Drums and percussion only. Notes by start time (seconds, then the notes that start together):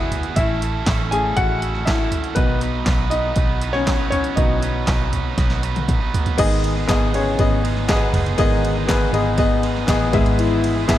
0.12 closed hi-hat, floor tom
0.23 closed hi-hat
0.36 kick, closed hi-hat
0.62 closed hi-hat
0.86 kick, snare, clap, closed hi-hat
1.12 closed hi-hat
1.37 kick, closed hi-hat
1.62 closed hi-hat
1.75 snare
1.87 kick, snare, clap, closed hi-hat
2.12 closed hi-hat, floor tom
2.24 closed hi-hat
2.36 kick, closed hi-hat
2.61 closed hi-hat
2.86 kick, snare, clap, closed hi-hat
3.11 closed hi-hat
3.36 kick, closed hi-hat
3.62 closed hi-hat
3.74 snare
3.87 kick, snare, clap, closed hi-hat
4.12 closed hi-hat, floor tom
4.24 closed hi-hat
4.37 kick, closed hi-hat
4.63 closed hi-hat
4.87 kick, snare, clap, closed hi-hat
5.13 closed hi-hat, floor tom
5.38 kick, snare, closed hi-hat
5.50 snare
5.63 closed hi-hat
5.76 closed hi-hat, high tom
5.88 kick, closed hi-hat, mid tom
6.14 closed hi-hat, floor tom
6.26 closed hi-hat, floor tom
6.38 kick, crash, ride
6.64 ride
6.89 kick, snare, clap, ride
7.14 ride
7.39 kick, ride
7.65 ride
7.77 snare
7.89 kick, snare, clap, ride
8.14 floor tom, ride
8.26 ride
8.38 kick, ride
8.65 ride
8.89 kick, snare, clap, ride
9.14 ride
9.38 kick, ride
9.63 ride
9.76 snare
9.88 kick, snare, clap, ride
10.13 kick, floor tom, ride
10.26 ride
10.39 ride
10.64 ride
10.89 kick, snare, clap, ride